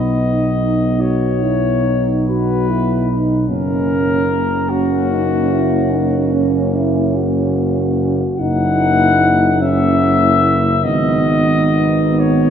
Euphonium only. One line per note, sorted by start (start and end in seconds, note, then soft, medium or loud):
0.00 1.02 D#4 soft
1.01 1.44 F#4 soft
1.43 1.87 E4 soft
1.85 2.28 D#4 soft
2.29 2.71 F#4 soft
2.70 3.11 E4 soft
3.10 3.50 D#4 soft
3.49 4.45 C#4 soft
4.70 5.08 C#4 soft
5.11 5.52 D#4 soft
5.51 5.92 E4 soft
5.91 6.35 D#4 medium
6.33 6.77 C#4 soft
6.75 7.17 E4 soft
7.16 8.42 F#4 soft
8.40 9.63 D#4 medium
9.62 10.59 C#4 soft
10.86 12.50 B3 medium